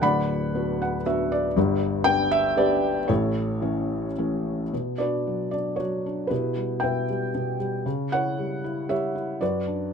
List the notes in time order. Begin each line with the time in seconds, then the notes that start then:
0.02 D1 D2 D5 F#5 B5
0.55 B3 D4 F#4
0.82 F#5
1.06 B3 D4 F#4 E5
1.32 D5
1.56 G1 G2
2.04 G3 B3 D4 G5
2.31 E5
2.56 G3 B3 D4 G4 B4 D5
3.08 A1 A2 E4 A4 C#5
3.62 E3 A3 C#4
4.18 E3 A3 C#4
4.73 B2
4.98 D4 F#4 B4 D5
5.27 F#3
5.51 D4 D5
5.76 F#3 F#4 C#5
6.06 D4
6.27 B2 E4 G4 B4
6.57 G3
6.80 B2 B4 E5 G5
7.09 G3
7.35 B2
7.60 G3
7.86 C#3
8.12 E4 C#5 F#5
8.39 G3
8.64 E4
8.89 G3 G4 C#5 E5
9.15 E4
9.41 F#2 F#4 B4 D5
9.67 D4